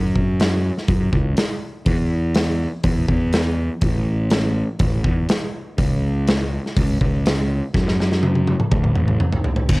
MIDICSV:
0, 0, Header, 1, 3, 480
1, 0, Start_track
1, 0, Tempo, 489396
1, 1832, Time_signature, 4, 2, 24, 8
1, 9612, End_track
2, 0, Start_track
2, 0, Title_t, "Picked electric bass"
2, 0, Program_c, 0, 34
2, 0, Note_on_c, 0, 42, 88
2, 684, Note_off_c, 0, 42, 0
2, 866, Note_on_c, 0, 42, 86
2, 1062, Note_off_c, 0, 42, 0
2, 1108, Note_on_c, 0, 37, 85
2, 1303, Note_off_c, 0, 37, 0
2, 1825, Note_on_c, 0, 40, 81
2, 2602, Note_off_c, 0, 40, 0
2, 2789, Note_on_c, 0, 40, 73
2, 2984, Note_off_c, 0, 40, 0
2, 3026, Note_on_c, 0, 40, 74
2, 3609, Note_off_c, 0, 40, 0
2, 3745, Note_on_c, 0, 33, 86
2, 4522, Note_off_c, 0, 33, 0
2, 4705, Note_on_c, 0, 33, 87
2, 4902, Note_off_c, 0, 33, 0
2, 4947, Note_on_c, 0, 40, 87
2, 5143, Note_off_c, 0, 40, 0
2, 5668, Note_on_c, 0, 37, 80
2, 6444, Note_off_c, 0, 37, 0
2, 6636, Note_on_c, 0, 37, 86
2, 6829, Note_off_c, 0, 37, 0
2, 6874, Note_on_c, 0, 37, 82
2, 7455, Note_off_c, 0, 37, 0
2, 7596, Note_on_c, 0, 42, 85
2, 8369, Note_off_c, 0, 42, 0
2, 8548, Note_on_c, 0, 38, 93
2, 8744, Note_off_c, 0, 38, 0
2, 8797, Note_on_c, 0, 33, 87
2, 8990, Note_off_c, 0, 33, 0
2, 9507, Note_on_c, 0, 31, 96
2, 9612, Note_off_c, 0, 31, 0
2, 9612, End_track
3, 0, Start_track
3, 0, Title_t, "Drums"
3, 152, Note_on_c, 9, 36, 66
3, 250, Note_off_c, 9, 36, 0
3, 390, Note_on_c, 9, 46, 41
3, 401, Note_on_c, 9, 38, 91
3, 488, Note_off_c, 9, 46, 0
3, 499, Note_off_c, 9, 38, 0
3, 760, Note_on_c, 9, 38, 27
3, 858, Note_off_c, 9, 38, 0
3, 865, Note_on_c, 9, 46, 46
3, 867, Note_on_c, 9, 36, 98
3, 963, Note_off_c, 9, 46, 0
3, 965, Note_off_c, 9, 36, 0
3, 1106, Note_on_c, 9, 36, 71
3, 1204, Note_off_c, 9, 36, 0
3, 1342, Note_on_c, 9, 46, 46
3, 1352, Note_on_c, 9, 38, 97
3, 1440, Note_off_c, 9, 46, 0
3, 1451, Note_off_c, 9, 38, 0
3, 1822, Note_on_c, 9, 46, 42
3, 1826, Note_on_c, 9, 36, 89
3, 1920, Note_off_c, 9, 46, 0
3, 1924, Note_off_c, 9, 36, 0
3, 2300, Note_on_c, 9, 46, 45
3, 2311, Note_on_c, 9, 38, 94
3, 2398, Note_off_c, 9, 46, 0
3, 2409, Note_off_c, 9, 38, 0
3, 2782, Note_on_c, 9, 46, 49
3, 2785, Note_on_c, 9, 36, 101
3, 2880, Note_off_c, 9, 46, 0
3, 2883, Note_off_c, 9, 36, 0
3, 3026, Note_on_c, 9, 36, 74
3, 3124, Note_off_c, 9, 36, 0
3, 3264, Note_on_c, 9, 46, 49
3, 3275, Note_on_c, 9, 38, 99
3, 3362, Note_off_c, 9, 46, 0
3, 3373, Note_off_c, 9, 38, 0
3, 3741, Note_on_c, 9, 46, 42
3, 3746, Note_on_c, 9, 36, 91
3, 3839, Note_off_c, 9, 46, 0
3, 3844, Note_off_c, 9, 36, 0
3, 4221, Note_on_c, 9, 46, 44
3, 4231, Note_on_c, 9, 38, 100
3, 4319, Note_off_c, 9, 46, 0
3, 4329, Note_off_c, 9, 38, 0
3, 4701, Note_on_c, 9, 46, 46
3, 4706, Note_on_c, 9, 36, 98
3, 4799, Note_off_c, 9, 46, 0
3, 4804, Note_off_c, 9, 36, 0
3, 4946, Note_on_c, 9, 36, 78
3, 5044, Note_off_c, 9, 36, 0
3, 5186, Note_on_c, 9, 46, 49
3, 5196, Note_on_c, 9, 38, 105
3, 5284, Note_off_c, 9, 46, 0
3, 5295, Note_off_c, 9, 38, 0
3, 5670, Note_on_c, 9, 46, 44
3, 5672, Note_on_c, 9, 36, 91
3, 5768, Note_off_c, 9, 46, 0
3, 5770, Note_off_c, 9, 36, 0
3, 6154, Note_on_c, 9, 46, 46
3, 6165, Note_on_c, 9, 38, 105
3, 6252, Note_off_c, 9, 46, 0
3, 6263, Note_off_c, 9, 38, 0
3, 6534, Note_on_c, 9, 38, 28
3, 6632, Note_off_c, 9, 38, 0
3, 6636, Note_on_c, 9, 36, 106
3, 6638, Note_on_c, 9, 46, 51
3, 6734, Note_off_c, 9, 36, 0
3, 6736, Note_off_c, 9, 46, 0
3, 6875, Note_on_c, 9, 36, 77
3, 6973, Note_off_c, 9, 36, 0
3, 7118, Note_on_c, 9, 46, 50
3, 7129, Note_on_c, 9, 38, 104
3, 7217, Note_off_c, 9, 46, 0
3, 7227, Note_off_c, 9, 38, 0
3, 7595, Note_on_c, 9, 36, 93
3, 7605, Note_on_c, 9, 38, 47
3, 7693, Note_off_c, 9, 36, 0
3, 7703, Note_off_c, 9, 38, 0
3, 7728, Note_on_c, 9, 38, 46
3, 7826, Note_off_c, 9, 38, 0
3, 7850, Note_on_c, 9, 38, 51
3, 7948, Note_off_c, 9, 38, 0
3, 7964, Note_on_c, 9, 38, 46
3, 8062, Note_off_c, 9, 38, 0
3, 8071, Note_on_c, 9, 48, 59
3, 8169, Note_off_c, 9, 48, 0
3, 8194, Note_on_c, 9, 48, 52
3, 8292, Note_off_c, 9, 48, 0
3, 8312, Note_on_c, 9, 48, 63
3, 8411, Note_off_c, 9, 48, 0
3, 8433, Note_on_c, 9, 47, 56
3, 8531, Note_off_c, 9, 47, 0
3, 8548, Note_on_c, 9, 47, 74
3, 8550, Note_on_c, 9, 36, 104
3, 8646, Note_off_c, 9, 47, 0
3, 8649, Note_off_c, 9, 36, 0
3, 8669, Note_on_c, 9, 47, 60
3, 8768, Note_off_c, 9, 47, 0
3, 8783, Note_on_c, 9, 45, 69
3, 8881, Note_off_c, 9, 45, 0
3, 8905, Note_on_c, 9, 45, 63
3, 9003, Note_off_c, 9, 45, 0
3, 9024, Note_on_c, 9, 45, 76
3, 9122, Note_off_c, 9, 45, 0
3, 9146, Note_on_c, 9, 43, 68
3, 9244, Note_off_c, 9, 43, 0
3, 9261, Note_on_c, 9, 43, 72
3, 9359, Note_off_c, 9, 43, 0
3, 9378, Note_on_c, 9, 43, 72
3, 9476, Note_off_c, 9, 43, 0
3, 9501, Note_on_c, 9, 49, 91
3, 9506, Note_on_c, 9, 36, 97
3, 9599, Note_off_c, 9, 49, 0
3, 9604, Note_off_c, 9, 36, 0
3, 9612, End_track
0, 0, End_of_file